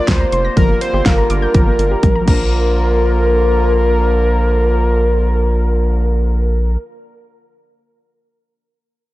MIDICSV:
0, 0, Header, 1, 6, 480
1, 0, Start_track
1, 0, Key_signature, -2, "major"
1, 0, Tempo, 487805
1, 560, Time_signature, 4, 2, 24, 8
1, 8991, End_track
2, 0, Start_track
2, 0, Title_t, "Analog synth lead"
2, 0, Program_c, 0, 81
2, 82, Note_on_c, 0, 72, 101
2, 555, Note_off_c, 0, 72, 0
2, 561, Note_on_c, 0, 70, 98
2, 783, Note_off_c, 0, 70, 0
2, 800, Note_on_c, 0, 72, 96
2, 1040, Note_on_c, 0, 70, 88
2, 1055, Note_off_c, 0, 72, 0
2, 2233, Note_off_c, 0, 70, 0
2, 2239, Note_on_c, 0, 70, 94
2, 6663, Note_off_c, 0, 70, 0
2, 8991, End_track
3, 0, Start_track
3, 0, Title_t, "Synth pluck"
3, 0, Program_c, 1, 84
3, 200, Note_on_c, 1, 82, 81
3, 297, Note_off_c, 1, 82, 0
3, 320, Note_on_c, 1, 84, 91
3, 417, Note_off_c, 1, 84, 0
3, 440, Note_on_c, 1, 94, 87
3, 537, Note_off_c, 1, 94, 0
3, 560, Note_on_c, 1, 53, 95
3, 657, Note_off_c, 1, 53, 0
3, 680, Note_on_c, 1, 58, 72
3, 777, Note_off_c, 1, 58, 0
3, 920, Note_on_c, 1, 67, 84
3, 1017, Note_off_c, 1, 67, 0
3, 1041, Note_on_c, 1, 77, 91
3, 1138, Note_off_c, 1, 77, 0
3, 1161, Note_on_c, 1, 82, 84
3, 1258, Note_off_c, 1, 82, 0
3, 1280, Note_on_c, 1, 86, 90
3, 1377, Note_off_c, 1, 86, 0
3, 1400, Note_on_c, 1, 91, 87
3, 1497, Note_off_c, 1, 91, 0
3, 1520, Note_on_c, 1, 53, 88
3, 1617, Note_off_c, 1, 53, 0
3, 1641, Note_on_c, 1, 58, 72
3, 1738, Note_off_c, 1, 58, 0
3, 1881, Note_on_c, 1, 67, 80
3, 1978, Note_off_c, 1, 67, 0
3, 2120, Note_on_c, 1, 82, 86
3, 2182, Note_on_c, 1, 53, 84
3, 2217, Note_off_c, 1, 82, 0
3, 2221, Note_on_c, 1, 58, 78
3, 2261, Note_on_c, 1, 62, 77
3, 2300, Note_on_c, 1, 70, 96
3, 6605, Note_off_c, 1, 53, 0
3, 6645, Note_off_c, 1, 58, 0
3, 6684, Note_off_c, 1, 62, 0
3, 6723, Note_off_c, 1, 70, 0
3, 8991, End_track
4, 0, Start_track
4, 0, Title_t, "Woodwind section"
4, 0, Program_c, 2, 71
4, 0, Note_on_c, 2, 48, 80
4, 0, Note_on_c, 2, 53, 73
4, 0, Note_on_c, 2, 58, 71
4, 0, Note_on_c, 2, 65, 86
4, 520, Note_off_c, 2, 48, 0
4, 541, Note_off_c, 2, 53, 0
4, 541, Note_off_c, 2, 65, 0
4, 558, Note_on_c, 2, 55, 70
4, 559, Note_on_c, 2, 50, 77
4, 559, Note_on_c, 2, 65, 86
4, 2072, Note_off_c, 2, 50, 0
4, 2072, Note_off_c, 2, 55, 0
4, 2072, Note_off_c, 2, 58, 0
4, 2072, Note_off_c, 2, 65, 0
4, 2239, Note_on_c, 2, 58, 70
4, 2239, Note_on_c, 2, 65, 85
4, 2240, Note_on_c, 2, 50, 77
4, 2240, Note_on_c, 2, 53, 73
4, 6663, Note_off_c, 2, 50, 0
4, 6663, Note_off_c, 2, 53, 0
4, 6663, Note_off_c, 2, 58, 0
4, 6663, Note_off_c, 2, 65, 0
4, 8991, End_track
5, 0, Start_track
5, 0, Title_t, "Analog synth bass"
5, 0, Program_c, 3, 38
5, 79, Note_on_c, 3, 38, 92
5, 247, Note_off_c, 3, 38, 0
5, 319, Note_on_c, 3, 29, 96
5, 487, Note_off_c, 3, 29, 0
5, 559, Note_on_c, 3, 31, 113
5, 727, Note_off_c, 3, 31, 0
5, 920, Note_on_c, 3, 31, 105
5, 1004, Note_off_c, 3, 31, 0
5, 1041, Note_on_c, 3, 31, 93
5, 1208, Note_off_c, 3, 31, 0
5, 1279, Note_on_c, 3, 31, 94
5, 1448, Note_off_c, 3, 31, 0
5, 1521, Note_on_c, 3, 31, 103
5, 1689, Note_off_c, 3, 31, 0
5, 1759, Note_on_c, 3, 31, 96
5, 1928, Note_off_c, 3, 31, 0
5, 1999, Note_on_c, 3, 34, 96
5, 2167, Note_off_c, 3, 34, 0
5, 2240, Note_on_c, 3, 34, 98
5, 6663, Note_off_c, 3, 34, 0
5, 8991, End_track
6, 0, Start_track
6, 0, Title_t, "Drums"
6, 77, Note_on_c, 9, 42, 73
6, 79, Note_on_c, 9, 36, 104
6, 80, Note_on_c, 9, 38, 99
6, 175, Note_off_c, 9, 42, 0
6, 177, Note_off_c, 9, 36, 0
6, 178, Note_off_c, 9, 38, 0
6, 319, Note_on_c, 9, 42, 70
6, 418, Note_off_c, 9, 42, 0
6, 559, Note_on_c, 9, 36, 103
6, 560, Note_on_c, 9, 42, 72
6, 658, Note_off_c, 9, 36, 0
6, 658, Note_off_c, 9, 42, 0
6, 800, Note_on_c, 9, 42, 80
6, 898, Note_off_c, 9, 42, 0
6, 1040, Note_on_c, 9, 38, 110
6, 1041, Note_on_c, 9, 36, 117
6, 1041, Note_on_c, 9, 42, 76
6, 1139, Note_off_c, 9, 36, 0
6, 1139, Note_off_c, 9, 38, 0
6, 1140, Note_off_c, 9, 42, 0
6, 1279, Note_on_c, 9, 42, 74
6, 1377, Note_off_c, 9, 42, 0
6, 1520, Note_on_c, 9, 42, 68
6, 1521, Note_on_c, 9, 36, 114
6, 1618, Note_off_c, 9, 42, 0
6, 1619, Note_off_c, 9, 36, 0
6, 1762, Note_on_c, 9, 42, 64
6, 1861, Note_off_c, 9, 42, 0
6, 1998, Note_on_c, 9, 42, 74
6, 1999, Note_on_c, 9, 36, 104
6, 2000, Note_on_c, 9, 48, 52
6, 2096, Note_off_c, 9, 42, 0
6, 2098, Note_off_c, 9, 36, 0
6, 2098, Note_off_c, 9, 48, 0
6, 2239, Note_on_c, 9, 49, 79
6, 2240, Note_on_c, 9, 36, 103
6, 2338, Note_off_c, 9, 36, 0
6, 2338, Note_off_c, 9, 49, 0
6, 8991, End_track
0, 0, End_of_file